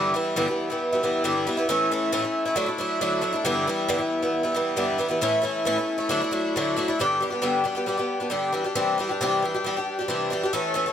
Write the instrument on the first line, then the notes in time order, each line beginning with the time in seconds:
twelve-string acoustic guitar
Already playing: G2 D3 E3 G3 B3 E4
0.14 E3 G3 B3 E4
0.36 G2 D3 E3 G3 B3 E4
0.48 E3 G3 B3 E4
0.70 E3 G3 B3 E4
0.93 E3 G3 B3 E4
1.03 E3 G3 B3 E4
1.24 G2 D3 E3 G3 B3 E4
1.47 E3 G3 B3 E4
1.57 E3 G3 B3 E4
1.69 A2 E3 A3 C#4 E4
1.91 E3 A3 C#4 E4
2.12 A2 E3 A3 C#4 E4
2.22 A3 C#4 E4
2.46 A3 C#4 E4
2.56 D3 F#3 A3 D4 E4
2.66 A3 D4 E4
2.78 F#3 A3 D4 E4
3.01 D3 F#3 A3 D4 E4
3.21 F#3 A3 D4 E4
3.33 A3 D4 E4
3.45 G2 D3 E3 G3 B3 E4
3.67 E3 G3 B3 E4
3.88 G2 D3 E3 G3 B3 E4
3.98 E3 G3 B3 E4
4.22 E3 G3 B3 E4
4.43 E3 G3 B3 E4
4.54 E3 G3 B3 E4
4.76 G2 D3 E3 G3 B3 E4
4.98 E3 G3 B3 E4
5.08 E3 G3 B3 E4
5.21 A2 E3 A3 C#4 E4
5.42 E3 A3 C#4 E4
5.65 A2 E3 A3 C#4 E4
5.78 A3 C#4 E4
5.98 A3 C#4 E4
6.09 D3 F#3 A3 D4 E4
6.21 A3 D4 E4
6.31 F#3 A3 D4 E4
6.56 D3 F#3 A3 D4 E4
6.76 F#3 A3 D4 E4
6.88 A3 D4 E4
6.99 G2 D3 G3 B3 D4 G4
7.20 G3 B3 D4 G4
7.30 G3 B3 D4 G4
7.42 G2 D3 G3 B3 D4 G4
7.64 G3 D4 G4
7.75 G3 B3 D4 G4
7.86 G3 B3 D4 G4
7.97 G3 B3 D4 G4
8.20 G3 B3 D4 G4
8.30 G2 D3 G3 B3 D4 G4
8.52 E3 G3 D4 G4
8.64 G3 D4 G4
8.75 C3 E3 G3 D4 G4
8.98 E3 G3 D4 G4
9.09 G3 D4 G4
9.21 C3 E3 G3 D4 G4
9.42 E3 G3 D4 G4
9.54 G3 D4 G4
9.64 E3 G3 D4 G4
9.77 G3 D4 G4
9.99 G3 D4 G4
10.08 C3 E3 G3 D4 G4
10.30 E3 G3 D4 G4
10.43 G3 D4 G4
10.53 A2 E3 A3 C#4 A4
10.74 E3 A3 C#4 A4
10.86 A3 C#4 A4